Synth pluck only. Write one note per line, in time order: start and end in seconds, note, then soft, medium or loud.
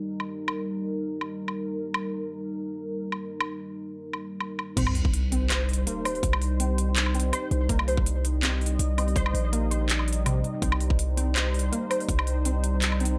4.77 4.94 C4 medium
5.32 5.49 C4 medium
5.50 5.67 C5 loud
5.87 6.04 A#3 medium
6.05 6.16 C5 medium
6.60 6.77 C4 medium
7.14 7.32 C4 medium
7.33 7.50 C5 loud
7.70 7.87 A#3 medium
7.88 7.99 C5 medium
8.42 8.60 C4 medium
8.98 9.15 C4 medium
9.16 9.33 C5 medium
9.53 9.70 A#3 medium
9.71 9.82 C5 medium
10.26 10.43 C3 loud
10.62 10.80 C4 medium
11.17 11.35 C4 medium
11.35 11.53 C5 medium
11.72 11.89 A#3 medium
11.90 12.01 C5 medium
12.46 12.63 C4 medium
13.00 13.18 C4 medium